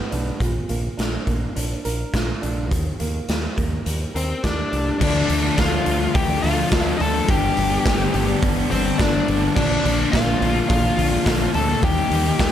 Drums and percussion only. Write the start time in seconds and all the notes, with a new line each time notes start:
0.12 closed hi-hat
0.40 kick, closed hi-hat
0.69 closed hi-hat
0.99 snare, closed hi-hat
1.27 kick, closed hi-hat
1.56 closed hi-hat
1.85 closed hi-hat
2.14 kick, snare, closed hi-hat
2.43 closed hi-hat
2.71 kick, closed hi-hat
3.00 closed hi-hat
3.29 snare, closed hi-hat
3.58 kick, closed hi-hat
3.86 closed hi-hat
4.16 closed hi-hat
4.44 kick, snare, closed hi-hat
4.73 closed hi-hat
5.01 kick, crash
5.29 open hi-hat
5.58 kick, snare, open hi-hat
5.86 open hi-hat
6.15 kick, open hi-hat
6.44 snare, open hi-hat
6.71 kick, snare, open hi-hat
7.00 open hi-hat
7.28 kick, open hi-hat
7.57 open hi-hat
7.86 kick, snare, open hi-hat
8.14 open hi-hat
8.43 kick, open hi-hat
8.72 open hi-hat
8.99 kick, snare, open hi-hat
9.28 open hi-hat
9.56 kick, crash
9.85 open hi-hat
10.13 kick, snare, open hi-hat
10.42 open hi-hat
10.70 kick, open hi-hat
10.99 open hi-hat
11.26 kick, snare, open hi-hat
11.54 open hi-hat
11.83 kick, open hi-hat
12.11 open hi-hat
12.39 kick, snare, open hi-hat